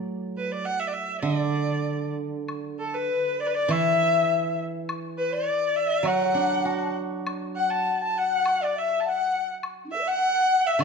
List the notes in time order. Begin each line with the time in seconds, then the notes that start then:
Already playing: F#3
0.37 B4
0.52 D5
0.65 F#5
0.80 E5
0.87 D5
0.93 E5
1.22 D3 D5
2.48 high woodblock
2.79 A4
2.94 B4
3.39 D5
3.47 B4
3.54 D5
3.68 E3 E5, high woodblock
4.89 high woodblock
5.18 B4
5.33 D5
5.76 E5
6.03 F#3 F#5, high woodblock
6.34 D4
6.65 F#4 A5, low woodblock
7.27 high woodblock
7.56 F#5
7.71 A5
8.02 A5
8.16 F#5
8.46 high woodblock
8.60 D5
8.76 E5
9.00 A5
9.05 F#5
9.63 high woodblock
9.84 D4
9.88 E4 E5
9.94 A4 B4
9.99 D5 E5
10.07 F#5
10.66 E5
10.79 D3 D5, high woodblock